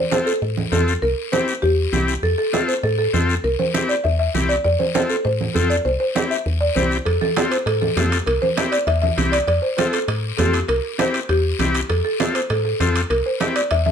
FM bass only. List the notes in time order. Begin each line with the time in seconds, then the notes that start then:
0.42 A2
0.72 F2
1.02 C2
1.63 E2
1.93 C2
2.23 F2
2.83 A2
3.14 F2
3.44 C2
4.05 E2
4.35 C2
4.65 F2
5.25 A2
5.55 F2
5.86 C2
6.46 E2
6.76 C2
7.06 F2
7.66 A2
7.97 F2
8.27 C2
8.87 E2
9.18 C2
9.48 F2
10.08 A2
10.39 F2
10.69 C2
11.29 E2
11.59 C2
11.90 F2
12.50 A2
12.80 F2
13.10 C2
13.71 E2